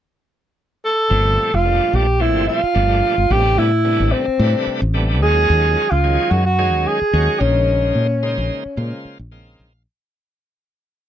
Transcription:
0.85 tenor saxophone A4
1.10 fretless electric bass G1, tonewheel organ A#2 F3 G3 A3 C4
1.54 fretless electric bass F1, tenor saxophone F4
1.65 tonewheel organ A#2 F3 G3 A3 D4
1.93 fretless electric bass A#1, tenor saxophone G4
2.20 tonewheel organ A#2 F3 G3 A3 C4, tenor saxophone E4
2.36 fretless electric bass G1
2.48 tenor saxophone F4
2.63 muted fretless electric bass stroke
2.75 fretless electric bass G1, tonewheel organ A#2 F3 G3 A3 D4
3.18 fretless electric bass G1
3.30 fretless electric bass A1, tonewheel organ C3 G3 A3 B3 D4, tenor saxophone G4
3.58 fretless electric bass A2, tenor saxophone E4
3.85 tonewheel organ C3 G3 A3 B3 D4
4.00 fretless electric bass A1
4.12 tenor saxophone C4
4.27 muted fretless electric bass stroke
4.39 fretless electric bass A2, tonewheel organ C3 G3 A3 D4 B4
4.67 muted fretless electric bass stroke
4.82 fretless electric bass A1
4.94 tonewheel organ C3 G3 A3 B3 D4
5.22 fretless electric bass D#2, tonewheel organ D#3 F#3 G#3 C#4 F4, tenor saxophone G#4
5.50 fretless electric bass D#2
5.91 fretless electric bass C#2, tenor saxophone F4
6.04 tonewheel organ D#3 F#3 G#3 C#4 G#4
6.30 fretless electric bass F#2, tenor saxophone F#4
6.46 tenor saxophone F#4
6.59 tonewheel organ D#3 F#3 G#3 C#4 G#4
6.74 fretless electric bass D#2
6.87 tenor saxophone G#4
7.01 muted fretless electric bass stroke
7.13 fretless electric bass D#2, tonewheel organ D#3 F#3 G#3 C#4 F#4
7.40 fretless electric bass A#1, tonewheel organ C#3 G#3 A#3 D#4 C5, tenor saxophone C#4
7.95 fretless electric bass A#2
8.23 tonewheel organ C#3 G#3 A#3 D#4 C5
8.38 fretless electric bass A#1
8.66 muted fretless electric bass stroke
8.77 fretless electric bass A#2, tonewheel organ C#3 G#3 A#3 F4 C5
9.05 muted fretless electric bass stroke
9.19 fretless electric bass A#1
9.32 tonewheel organ C#3 G#3 A#3 C4 D#4 F5
9.59 fretless electric bass A#1

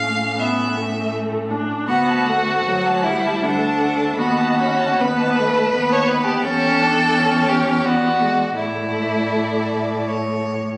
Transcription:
Already playing: cello A2, viola A3, violin C#4 F5
0.37 viola B3, violin E5
0.76 viola A3
1.51 viola D4
1.88 cello D2, viola B3, violin F#4 F#5
2.07 violin A5
2.26 viola A3, violin F#5
2.46 violin A5
2.65 cello D2, viola F#3, violin F#5
2.86 violin A5
3.03 viola G3, violin E4 F#5
3.23 violin A5
3.42 cello D2, viola A3, violin D4 F#5
3.61 violin A5
3.78 violin F#5
3.99 violin A5
4.15 cello D#2, viola B3, violin F#4 B5
4.37 violin A5
4.59 viola C#4, violin B5
4.78 violin A5
4.98 cello D#2, viola B3, violin B4 B5
5.16 violin A5
5.36 viola A3, violin B5
5.53 violin A5
5.70 cello D#2, violin B5
5.75 viola B3
5.89 violin C#5 A5
6.05 violin B4 B5
6.23 violin G4 A5
6.40 cello E2, violin A4 G5
6.44 viola C#4
6.80 viola D4
7.17 viola C#4
7.49 violin G4
7.83 viola B3, violin F#4 D5
8.21 viola G#3
8.56 cello A2, viola A3, violin E4 D5
10.07 violin C#5

